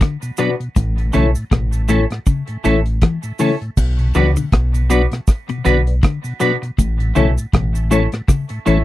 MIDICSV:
0, 0, Header, 1, 8, 480
1, 0, Start_track
1, 0, Key_signature, 2, "minor"
1, 0, Tempo, 752823
1, 486, Time_signature, 4, 2, 24, 8
1, 5639, End_track
2, 0, Start_track
2, 0, Title_t, "Reed electric piano"
2, 0, Program_c, 0, 4
2, 246, Note_on_c, 0, 66, 89
2, 251, Note_on_c, 0, 71, 82
2, 255, Note_on_c, 0, 74, 100
2, 344, Note_off_c, 0, 66, 0
2, 346, Note_off_c, 0, 71, 0
2, 348, Note_off_c, 0, 74, 0
2, 727, Note_on_c, 0, 64, 82
2, 731, Note_on_c, 0, 69, 79
2, 734, Note_on_c, 0, 73, 99
2, 824, Note_off_c, 0, 64, 0
2, 826, Note_off_c, 0, 69, 0
2, 828, Note_off_c, 0, 73, 0
2, 1206, Note_on_c, 0, 64, 87
2, 1211, Note_on_c, 0, 69, 80
2, 1214, Note_on_c, 0, 73, 94
2, 1304, Note_off_c, 0, 64, 0
2, 1306, Note_off_c, 0, 69, 0
2, 1308, Note_off_c, 0, 73, 0
2, 1686, Note_on_c, 0, 64, 88
2, 1689, Note_on_c, 0, 69, 79
2, 1694, Note_on_c, 0, 73, 93
2, 1784, Note_off_c, 0, 64, 0
2, 1785, Note_off_c, 0, 69, 0
2, 1788, Note_off_c, 0, 73, 0
2, 2163, Note_on_c, 0, 64, 92
2, 2167, Note_on_c, 0, 69, 81
2, 2171, Note_on_c, 0, 73, 100
2, 2262, Note_off_c, 0, 64, 0
2, 2264, Note_off_c, 0, 69, 0
2, 2266, Note_off_c, 0, 73, 0
2, 2645, Note_on_c, 0, 66, 84
2, 2650, Note_on_c, 0, 71, 80
2, 2652, Note_on_c, 0, 74, 95
2, 2743, Note_off_c, 0, 66, 0
2, 2746, Note_off_c, 0, 71, 0
2, 2747, Note_off_c, 0, 74, 0
2, 3126, Note_on_c, 0, 66, 92
2, 3129, Note_on_c, 0, 71, 77
2, 3133, Note_on_c, 0, 74, 97
2, 3224, Note_off_c, 0, 66, 0
2, 3225, Note_off_c, 0, 71, 0
2, 3227, Note_off_c, 0, 74, 0
2, 3603, Note_on_c, 0, 66, 83
2, 3608, Note_on_c, 0, 71, 80
2, 3611, Note_on_c, 0, 74, 94
2, 3702, Note_off_c, 0, 66, 0
2, 3705, Note_off_c, 0, 71, 0
2, 3706, Note_off_c, 0, 74, 0
2, 3745, Note_on_c, 0, 71, 41
2, 3746, Note_on_c, 0, 74, 43
2, 3785, Note_off_c, 0, 71, 0
2, 3786, Note_off_c, 0, 74, 0
2, 4081, Note_on_c, 0, 66, 92
2, 4086, Note_on_c, 0, 71, 86
2, 4089, Note_on_c, 0, 74, 100
2, 4181, Note_off_c, 0, 66, 0
2, 4184, Note_off_c, 0, 71, 0
2, 4185, Note_off_c, 0, 74, 0
2, 4564, Note_on_c, 0, 64, 90
2, 4567, Note_on_c, 0, 69, 83
2, 4571, Note_on_c, 0, 73, 97
2, 4663, Note_off_c, 0, 64, 0
2, 4664, Note_off_c, 0, 69, 0
2, 4666, Note_off_c, 0, 73, 0
2, 5043, Note_on_c, 0, 64, 92
2, 5047, Note_on_c, 0, 69, 84
2, 5051, Note_on_c, 0, 73, 102
2, 5142, Note_off_c, 0, 64, 0
2, 5144, Note_off_c, 0, 69, 0
2, 5146, Note_off_c, 0, 73, 0
2, 5523, Note_on_c, 0, 64, 90
2, 5528, Note_on_c, 0, 69, 79
2, 5531, Note_on_c, 0, 73, 94
2, 5622, Note_off_c, 0, 64, 0
2, 5624, Note_off_c, 0, 69, 0
2, 5625, Note_off_c, 0, 73, 0
2, 5639, End_track
3, 0, Start_track
3, 0, Title_t, "Clean electric guitar"
3, 0, Program_c, 1, 27
3, 244, Note_on_c, 1, 59, 73
3, 248, Note_on_c, 1, 62, 75
3, 252, Note_on_c, 1, 66, 75
3, 256, Note_on_c, 1, 71, 78
3, 337, Note_off_c, 1, 59, 0
3, 340, Note_off_c, 1, 62, 0
3, 341, Note_off_c, 1, 66, 0
3, 343, Note_off_c, 1, 71, 0
3, 722, Note_on_c, 1, 57, 77
3, 726, Note_on_c, 1, 61, 89
3, 728, Note_on_c, 1, 64, 91
3, 734, Note_on_c, 1, 69, 93
3, 817, Note_off_c, 1, 57, 0
3, 819, Note_off_c, 1, 61, 0
3, 820, Note_off_c, 1, 64, 0
3, 823, Note_off_c, 1, 69, 0
3, 1202, Note_on_c, 1, 57, 79
3, 1207, Note_on_c, 1, 61, 87
3, 1210, Note_on_c, 1, 64, 97
3, 1213, Note_on_c, 1, 69, 89
3, 1297, Note_off_c, 1, 57, 0
3, 1299, Note_off_c, 1, 61, 0
3, 1301, Note_off_c, 1, 64, 0
3, 1302, Note_off_c, 1, 69, 0
3, 1684, Note_on_c, 1, 57, 80
3, 1687, Note_on_c, 1, 61, 80
3, 1690, Note_on_c, 1, 64, 101
3, 1694, Note_on_c, 1, 69, 94
3, 1778, Note_off_c, 1, 57, 0
3, 1779, Note_off_c, 1, 61, 0
3, 1781, Note_off_c, 1, 64, 0
3, 1783, Note_off_c, 1, 69, 0
3, 2165, Note_on_c, 1, 57, 78
3, 2170, Note_on_c, 1, 61, 84
3, 2174, Note_on_c, 1, 64, 79
3, 2176, Note_on_c, 1, 69, 94
3, 2258, Note_off_c, 1, 57, 0
3, 2261, Note_off_c, 1, 61, 0
3, 2263, Note_off_c, 1, 64, 0
3, 2264, Note_off_c, 1, 69, 0
3, 2645, Note_on_c, 1, 59, 83
3, 2650, Note_on_c, 1, 62, 98
3, 2652, Note_on_c, 1, 66, 93
3, 2656, Note_on_c, 1, 71, 100
3, 2738, Note_off_c, 1, 59, 0
3, 2741, Note_off_c, 1, 62, 0
3, 2742, Note_off_c, 1, 66, 0
3, 2744, Note_off_c, 1, 71, 0
3, 3123, Note_on_c, 1, 59, 75
3, 3125, Note_on_c, 1, 62, 81
3, 3130, Note_on_c, 1, 66, 77
3, 3133, Note_on_c, 1, 71, 86
3, 3217, Note_off_c, 1, 59, 0
3, 3219, Note_off_c, 1, 62, 0
3, 3221, Note_off_c, 1, 66, 0
3, 3222, Note_off_c, 1, 71, 0
3, 3600, Note_on_c, 1, 59, 97
3, 3604, Note_on_c, 1, 62, 83
3, 3607, Note_on_c, 1, 66, 100
3, 3610, Note_on_c, 1, 71, 104
3, 3696, Note_off_c, 1, 59, 0
3, 3698, Note_off_c, 1, 62, 0
3, 3699, Note_off_c, 1, 66, 0
3, 3701, Note_off_c, 1, 71, 0
3, 4080, Note_on_c, 1, 59, 70
3, 4084, Note_on_c, 1, 62, 72
3, 4087, Note_on_c, 1, 66, 76
3, 4090, Note_on_c, 1, 71, 85
3, 4176, Note_off_c, 1, 59, 0
3, 4178, Note_off_c, 1, 62, 0
3, 4179, Note_off_c, 1, 66, 0
3, 4181, Note_off_c, 1, 71, 0
3, 4561, Note_on_c, 1, 57, 94
3, 4565, Note_on_c, 1, 61, 89
3, 4567, Note_on_c, 1, 64, 97
3, 4571, Note_on_c, 1, 69, 92
3, 4656, Note_off_c, 1, 57, 0
3, 4658, Note_off_c, 1, 61, 0
3, 4659, Note_off_c, 1, 64, 0
3, 4661, Note_off_c, 1, 69, 0
3, 5042, Note_on_c, 1, 57, 74
3, 5047, Note_on_c, 1, 61, 78
3, 5050, Note_on_c, 1, 64, 85
3, 5053, Note_on_c, 1, 69, 80
3, 5137, Note_off_c, 1, 57, 0
3, 5139, Note_off_c, 1, 61, 0
3, 5140, Note_off_c, 1, 64, 0
3, 5142, Note_off_c, 1, 69, 0
3, 5520, Note_on_c, 1, 57, 80
3, 5526, Note_on_c, 1, 61, 82
3, 5529, Note_on_c, 1, 64, 98
3, 5530, Note_on_c, 1, 69, 93
3, 5615, Note_off_c, 1, 57, 0
3, 5618, Note_off_c, 1, 61, 0
3, 5620, Note_off_c, 1, 64, 0
3, 5620, Note_off_c, 1, 69, 0
3, 5639, End_track
4, 0, Start_track
4, 0, Title_t, "Tonewheel organ"
4, 0, Program_c, 2, 16
4, 145, Note_on_c, 2, 47, 59
4, 201, Note_off_c, 2, 47, 0
4, 244, Note_on_c, 2, 54, 70
4, 246, Note_on_c, 2, 59, 61
4, 249, Note_on_c, 2, 62, 77
4, 320, Note_off_c, 2, 54, 0
4, 322, Note_off_c, 2, 59, 0
4, 323, Note_off_c, 2, 62, 0
4, 383, Note_on_c, 2, 47, 56
4, 440, Note_off_c, 2, 47, 0
4, 621, Note_on_c, 2, 45, 58
4, 679, Note_off_c, 2, 45, 0
4, 725, Note_on_c, 2, 52, 71
4, 727, Note_on_c, 2, 57, 64
4, 728, Note_on_c, 2, 61, 77
4, 801, Note_off_c, 2, 52, 0
4, 802, Note_off_c, 2, 57, 0
4, 803, Note_off_c, 2, 61, 0
4, 864, Note_on_c, 2, 45, 57
4, 921, Note_off_c, 2, 45, 0
4, 1103, Note_on_c, 2, 45, 56
4, 1160, Note_off_c, 2, 45, 0
4, 1203, Note_on_c, 2, 52, 75
4, 1203, Note_on_c, 2, 57, 69
4, 1206, Note_on_c, 2, 61, 81
4, 1280, Note_off_c, 2, 52, 0
4, 1281, Note_off_c, 2, 57, 0
4, 1282, Note_off_c, 2, 61, 0
4, 1342, Note_on_c, 2, 45, 53
4, 1400, Note_off_c, 2, 45, 0
4, 1584, Note_on_c, 2, 45, 54
4, 1641, Note_off_c, 2, 45, 0
4, 1685, Note_on_c, 2, 52, 68
4, 1685, Note_on_c, 2, 57, 64
4, 1689, Note_on_c, 2, 61, 79
4, 1761, Note_off_c, 2, 52, 0
4, 1762, Note_off_c, 2, 57, 0
4, 1763, Note_off_c, 2, 61, 0
4, 2061, Note_on_c, 2, 45, 56
4, 2119, Note_off_c, 2, 45, 0
4, 2163, Note_on_c, 2, 52, 62
4, 2165, Note_on_c, 2, 57, 60
4, 2167, Note_on_c, 2, 61, 75
4, 2240, Note_off_c, 2, 52, 0
4, 2242, Note_off_c, 2, 57, 0
4, 2242, Note_off_c, 2, 61, 0
4, 2303, Note_on_c, 2, 45, 55
4, 2360, Note_off_c, 2, 45, 0
4, 2545, Note_on_c, 2, 47, 57
4, 2602, Note_off_c, 2, 47, 0
4, 2646, Note_on_c, 2, 54, 71
4, 2648, Note_on_c, 2, 59, 62
4, 2649, Note_on_c, 2, 62, 72
4, 2722, Note_off_c, 2, 54, 0
4, 2723, Note_off_c, 2, 59, 0
4, 2724, Note_off_c, 2, 62, 0
4, 2784, Note_on_c, 2, 47, 57
4, 2841, Note_off_c, 2, 47, 0
4, 3020, Note_on_c, 2, 47, 57
4, 3079, Note_off_c, 2, 47, 0
4, 3122, Note_on_c, 2, 54, 78
4, 3125, Note_on_c, 2, 59, 70
4, 3126, Note_on_c, 2, 62, 87
4, 3200, Note_off_c, 2, 54, 0
4, 3201, Note_off_c, 2, 59, 0
4, 3202, Note_off_c, 2, 62, 0
4, 3260, Note_on_c, 2, 47, 58
4, 3319, Note_off_c, 2, 47, 0
4, 3498, Note_on_c, 2, 47, 56
4, 3558, Note_off_c, 2, 47, 0
4, 3600, Note_on_c, 2, 54, 76
4, 3604, Note_on_c, 2, 59, 69
4, 3604, Note_on_c, 2, 62, 81
4, 3679, Note_off_c, 2, 54, 0
4, 3681, Note_off_c, 2, 59, 0
4, 3681, Note_off_c, 2, 62, 0
4, 3981, Note_on_c, 2, 47, 61
4, 4039, Note_off_c, 2, 47, 0
4, 4081, Note_on_c, 2, 54, 70
4, 4083, Note_on_c, 2, 59, 61
4, 4085, Note_on_c, 2, 62, 78
4, 4160, Note_off_c, 2, 54, 0
4, 4160, Note_off_c, 2, 59, 0
4, 4162, Note_off_c, 2, 62, 0
4, 4223, Note_on_c, 2, 47, 56
4, 4280, Note_off_c, 2, 47, 0
4, 4463, Note_on_c, 2, 45, 61
4, 4520, Note_off_c, 2, 45, 0
4, 4562, Note_on_c, 2, 52, 67
4, 4565, Note_on_c, 2, 57, 64
4, 4566, Note_on_c, 2, 61, 73
4, 4640, Note_off_c, 2, 52, 0
4, 4641, Note_off_c, 2, 57, 0
4, 4642, Note_off_c, 2, 61, 0
4, 4700, Note_on_c, 2, 45, 57
4, 4759, Note_off_c, 2, 45, 0
4, 4940, Note_on_c, 2, 45, 57
4, 4998, Note_off_c, 2, 45, 0
4, 5040, Note_on_c, 2, 52, 78
4, 5042, Note_on_c, 2, 57, 69
4, 5045, Note_on_c, 2, 61, 85
4, 5119, Note_off_c, 2, 52, 0
4, 5119, Note_off_c, 2, 57, 0
4, 5121, Note_off_c, 2, 61, 0
4, 5180, Note_on_c, 2, 45, 56
4, 5239, Note_off_c, 2, 45, 0
4, 5421, Note_on_c, 2, 45, 54
4, 5479, Note_off_c, 2, 45, 0
4, 5523, Note_on_c, 2, 52, 77
4, 5525, Note_on_c, 2, 57, 70
4, 5527, Note_on_c, 2, 61, 81
4, 5600, Note_off_c, 2, 52, 0
4, 5601, Note_off_c, 2, 57, 0
4, 5602, Note_off_c, 2, 61, 0
4, 5639, End_track
5, 0, Start_track
5, 0, Title_t, "Clean electric guitar"
5, 0, Program_c, 3, 27
5, 5, Note_on_c, 3, 50, 79
5, 100, Note_off_c, 3, 50, 0
5, 245, Note_on_c, 3, 47, 70
5, 340, Note_off_c, 3, 47, 0
5, 486, Note_on_c, 3, 45, 77
5, 581, Note_off_c, 3, 45, 0
5, 724, Note_on_c, 3, 49, 69
5, 819, Note_off_c, 3, 49, 0
5, 964, Note_on_c, 3, 47, 71
5, 1060, Note_off_c, 3, 47, 0
5, 1205, Note_on_c, 3, 45, 81
5, 1300, Note_off_c, 3, 45, 0
5, 1447, Note_on_c, 3, 49, 93
5, 1541, Note_off_c, 3, 49, 0
5, 1688, Note_on_c, 3, 52, 71
5, 1783, Note_off_c, 3, 52, 0
5, 1930, Note_on_c, 3, 52, 84
5, 2024, Note_off_c, 3, 52, 0
5, 2170, Note_on_c, 3, 49, 62
5, 2264, Note_off_c, 3, 49, 0
5, 2648, Note_on_c, 3, 52, 74
5, 2742, Note_off_c, 3, 52, 0
5, 2785, Note_on_c, 3, 50, 72
5, 2856, Note_off_c, 3, 50, 0
5, 3504, Note_on_c, 3, 47, 80
5, 3575, Note_off_c, 3, 47, 0
5, 3610, Note_on_c, 3, 50, 75
5, 3704, Note_off_c, 3, 50, 0
5, 3844, Note_on_c, 3, 50, 78
5, 3940, Note_off_c, 3, 50, 0
5, 4086, Note_on_c, 3, 47, 75
5, 4181, Note_off_c, 3, 47, 0
5, 4327, Note_on_c, 3, 45, 81
5, 4422, Note_off_c, 3, 45, 0
5, 4562, Note_on_c, 3, 49, 68
5, 4658, Note_off_c, 3, 49, 0
5, 4806, Note_on_c, 3, 47, 72
5, 4901, Note_off_c, 3, 47, 0
5, 5046, Note_on_c, 3, 45, 85
5, 5141, Note_off_c, 3, 45, 0
5, 5285, Note_on_c, 3, 49, 98
5, 5380, Note_off_c, 3, 49, 0
5, 5526, Note_on_c, 3, 52, 74
5, 5621, Note_off_c, 3, 52, 0
5, 5639, End_track
6, 0, Start_track
6, 0, Title_t, "Fingered electric bass"
6, 0, Program_c, 4, 33
6, 491, Note_on_c, 4, 33, 102
6, 702, Note_off_c, 4, 33, 0
6, 734, Note_on_c, 4, 35, 85
6, 852, Note_off_c, 4, 35, 0
6, 971, Note_on_c, 4, 33, 91
6, 1304, Note_off_c, 4, 33, 0
6, 1693, Note_on_c, 4, 33, 88
6, 1903, Note_off_c, 4, 33, 0
6, 2409, Note_on_c, 4, 35, 105
6, 2621, Note_off_c, 4, 35, 0
6, 2652, Note_on_c, 4, 37, 90
6, 2771, Note_off_c, 4, 37, 0
6, 2888, Note_on_c, 4, 35, 93
6, 3222, Note_off_c, 4, 35, 0
6, 3610, Note_on_c, 4, 35, 96
6, 3822, Note_off_c, 4, 35, 0
6, 4329, Note_on_c, 4, 33, 100
6, 4541, Note_off_c, 4, 33, 0
6, 4570, Note_on_c, 4, 35, 90
6, 4690, Note_off_c, 4, 35, 0
6, 4809, Note_on_c, 4, 33, 97
6, 5142, Note_off_c, 4, 33, 0
6, 5531, Note_on_c, 4, 33, 86
6, 5639, Note_off_c, 4, 33, 0
6, 5639, End_track
7, 0, Start_track
7, 0, Title_t, "Muted clean electric guitar strokes"
7, 4220, Note_on_c, 9, 29, 51
7, 4284, Note_off_c, 9, 29, 0
7, 5639, End_track
8, 0, Start_track
8, 0, Title_t, "Drums"
8, 5, Note_on_c, 9, 42, 96
8, 7, Note_on_c, 9, 36, 113
8, 15, Note_on_c, 9, 37, 108
8, 69, Note_off_c, 9, 42, 0
8, 71, Note_off_c, 9, 36, 0
8, 79, Note_off_c, 9, 37, 0
8, 142, Note_on_c, 9, 69, 45
8, 146, Note_on_c, 9, 42, 45
8, 206, Note_off_c, 9, 69, 0
8, 210, Note_off_c, 9, 42, 0
8, 238, Note_on_c, 9, 69, 78
8, 246, Note_on_c, 9, 42, 74
8, 302, Note_off_c, 9, 69, 0
8, 310, Note_off_c, 9, 42, 0
8, 386, Note_on_c, 9, 42, 49
8, 450, Note_off_c, 9, 42, 0
8, 485, Note_on_c, 9, 69, 75
8, 486, Note_on_c, 9, 36, 105
8, 488, Note_on_c, 9, 42, 93
8, 549, Note_off_c, 9, 69, 0
8, 550, Note_off_c, 9, 36, 0
8, 551, Note_off_c, 9, 42, 0
8, 625, Note_on_c, 9, 42, 46
8, 689, Note_off_c, 9, 42, 0
8, 720, Note_on_c, 9, 69, 51
8, 727, Note_on_c, 9, 42, 72
8, 783, Note_off_c, 9, 69, 0
8, 791, Note_off_c, 9, 42, 0
8, 861, Note_on_c, 9, 69, 63
8, 866, Note_on_c, 9, 42, 42
8, 925, Note_off_c, 9, 69, 0
8, 930, Note_off_c, 9, 42, 0
8, 966, Note_on_c, 9, 36, 107
8, 966, Note_on_c, 9, 42, 83
8, 974, Note_on_c, 9, 37, 105
8, 1030, Note_off_c, 9, 36, 0
8, 1030, Note_off_c, 9, 42, 0
8, 1037, Note_off_c, 9, 37, 0
8, 1101, Note_on_c, 9, 69, 51
8, 1107, Note_on_c, 9, 42, 50
8, 1165, Note_off_c, 9, 69, 0
8, 1170, Note_off_c, 9, 42, 0
8, 1202, Note_on_c, 9, 69, 83
8, 1208, Note_on_c, 9, 42, 71
8, 1265, Note_off_c, 9, 69, 0
8, 1272, Note_off_c, 9, 42, 0
8, 1342, Note_on_c, 9, 42, 53
8, 1352, Note_on_c, 9, 37, 69
8, 1406, Note_off_c, 9, 42, 0
8, 1416, Note_off_c, 9, 37, 0
8, 1442, Note_on_c, 9, 69, 77
8, 1445, Note_on_c, 9, 36, 108
8, 1446, Note_on_c, 9, 42, 60
8, 1506, Note_off_c, 9, 69, 0
8, 1509, Note_off_c, 9, 36, 0
8, 1510, Note_off_c, 9, 42, 0
8, 1578, Note_on_c, 9, 42, 57
8, 1642, Note_off_c, 9, 42, 0
8, 1687, Note_on_c, 9, 69, 55
8, 1688, Note_on_c, 9, 42, 63
8, 1750, Note_off_c, 9, 69, 0
8, 1752, Note_off_c, 9, 42, 0
8, 1821, Note_on_c, 9, 42, 50
8, 1885, Note_off_c, 9, 42, 0
8, 1922, Note_on_c, 9, 42, 93
8, 1926, Note_on_c, 9, 36, 109
8, 1933, Note_on_c, 9, 37, 108
8, 1986, Note_off_c, 9, 42, 0
8, 1990, Note_off_c, 9, 36, 0
8, 1996, Note_off_c, 9, 37, 0
8, 2059, Note_on_c, 9, 69, 45
8, 2064, Note_on_c, 9, 42, 44
8, 2123, Note_off_c, 9, 69, 0
8, 2128, Note_off_c, 9, 42, 0
8, 2160, Note_on_c, 9, 69, 74
8, 2164, Note_on_c, 9, 46, 71
8, 2224, Note_off_c, 9, 69, 0
8, 2228, Note_off_c, 9, 46, 0
8, 2306, Note_on_c, 9, 42, 47
8, 2370, Note_off_c, 9, 42, 0
8, 2406, Note_on_c, 9, 36, 113
8, 2406, Note_on_c, 9, 49, 96
8, 2406, Note_on_c, 9, 69, 74
8, 2469, Note_off_c, 9, 36, 0
8, 2469, Note_off_c, 9, 49, 0
8, 2469, Note_off_c, 9, 69, 0
8, 2542, Note_on_c, 9, 42, 45
8, 2606, Note_off_c, 9, 42, 0
8, 2641, Note_on_c, 9, 69, 53
8, 2646, Note_on_c, 9, 42, 74
8, 2705, Note_off_c, 9, 69, 0
8, 2709, Note_off_c, 9, 42, 0
8, 2782, Note_on_c, 9, 69, 67
8, 2785, Note_on_c, 9, 42, 47
8, 2845, Note_off_c, 9, 69, 0
8, 2848, Note_off_c, 9, 42, 0
8, 2884, Note_on_c, 9, 42, 85
8, 2885, Note_on_c, 9, 36, 110
8, 2891, Note_on_c, 9, 37, 109
8, 2947, Note_off_c, 9, 42, 0
8, 2949, Note_off_c, 9, 36, 0
8, 2955, Note_off_c, 9, 37, 0
8, 3025, Note_on_c, 9, 69, 52
8, 3026, Note_on_c, 9, 42, 55
8, 3089, Note_off_c, 9, 69, 0
8, 3090, Note_off_c, 9, 42, 0
8, 3126, Note_on_c, 9, 42, 70
8, 3126, Note_on_c, 9, 69, 85
8, 3190, Note_off_c, 9, 42, 0
8, 3190, Note_off_c, 9, 69, 0
8, 3262, Note_on_c, 9, 42, 54
8, 3272, Note_on_c, 9, 37, 69
8, 3326, Note_off_c, 9, 42, 0
8, 3335, Note_off_c, 9, 37, 0
8, 3363, Note_on_c, 9, 69, 84
8, 3365, Note_on_c, 9, 36, 120
8, 3368, Note_on_c, 9, 42, 67
8, 3372, Note_on_c, 9, 37, 67
8, 3427, Note_off_c, 9, 69, 0
8, 3429, Note_off_c, 9, 36, 0
8, 3431, Note_off_c, 9, 42, 0
8, 3436, Note_off_c, 9, 37, 0
8, 3501, Note_on_c, 9, 42, 58
8, 3565, Note_off_c, 9, 42, 0
8, 3604, Note_on_c, 9, 69, 56
8, 3608, Note_on_c, 9, 42, 66
8, 3667, Note_off_c, 9, 69, 0
8, 3672, Note_off_c, 9, 42, 0
8, 3743, Note_on_c, 9, 42, 52
8, 3807, Note_off_c, 9, 42, 0
8, 3844, Note_on_c, 9, 42, 95
8, 3846, Note_on_c, 9, 36, 116
8, 3854, Note_on_c, 9, 37, 112
8, 3908, Note_off_c, 9, 42, 0
8, 3910, Note_off_c, 9, 36, 0
8, 3918, Note_off_c, 9, 37, 0
8, 3980, Note_on_c, 9, 69, 45
8, 3987, Note_on_c, 9, 42, 48
8, 4044, Note_off_c, 9, 69, 0
8, 4051, Note_off_c, 9, 42, 0
8, 4082, Note_on_c, 9, 69, 78
8, 4087, Note_on_c, 9, 42, 75
8, 4145, Note_off_c, 9, 69, 0
8, 4151, Note_off_c, 9, 42, 0
8, 4228, Note_on_c, 9, 42, 52
8, 4292, Note_off_c, 9, 42, 0
8, 4326, Note_on_c, 9, 36, 110
8, 4328, Note_on_c, 9, 42, 86
8, 4329, Note_on_c, 9, 69, 74
8, 4390, Note_off_c, 9, 36, 0
8, 4392, Note_off_c, 9, 42, 0
8, 4393, Note_off_c, 9, 69, 0
8, 4464, Note_on_c, 9, 42, 49
8, 4528, Note_off_c, 9, 42, 0
8, 4562, Note_on_c, 9, 69, 54
8, 4567, Note_on_c, 9, 42, 73
8, 4626, Note_off_c, 9, 69, 0
8, 4630, Note_off_c, 9, 42, 0
8, 4704, Note_on_c, 9, 69, 63
8, 4705, Note_on_c, 9, 42, 46
8, 4768, Note_off_c, 9, 42, 0
8, 4768, Note_off_c, 9, 69, 0
8, 4804, Note_on_c, 9, 36, 112
8, 4804, Note_on_c, 9, 42, 86
8, 4811, Note_on_c, 9, 37, 115
8, 4867, Note_off_c, 9, 36, 0
8, 4867, Note_off_c, 9, 42, 0
8, 4875, Note_off_c, 9, 37, 0
8, 4943, Note_on_c, 9, 69, 53
8, 4944, Note_on_c, 9, 42, 54
8, 5007, Note_off_c, 9, 42, 0
8, 5007, Note_off_c, 9, 69, 0
8, 5044, Note_on_c, 9, 42, 71
8, 5046, Note_on_c, 9, 69, 86
8, 5108, Note_off_c, 9, 42, 0
8, 5110, Note_off_c, 9, 69, 0
8, 5178, Note_on_c, 9, 42, 53
8, 5187, Note_on_c, 9, 37, 69
8, 5241, Note_off_c, 9, 42, 0
8, 5251, Note_off_c, 9, 37, 0
8, 5280, Note_on_c, 9, 42, 65
8, 5282, Note_on_c, 9, 36, 118
8, 5285, Note_on_c, 9, 37, 75
8, 5285, Note_on_c, 9, 69, 80
8, 5344, Note_off_c, 9, 42, 0
8, 5345, Note_off_c, 9, 36, 0
8, 5349, Note_off_c, 9, 37, 0
8, 5349, Note_off_c, 9, 69, 0
8, 5414, Note_on_c, 9, 42, 61
8, 5477, Note_off_c, 9, 42, 0
8, 5523, Note_on_c, 9, 42, 66
8, 5526, Note_on_c, 9, 69, 58
8, 5587, Note_off_c, 9, 42, 0
8, 5589, Note_off_c, 9, 69, 0
8, 5639, End_track
0, 0, End_of_file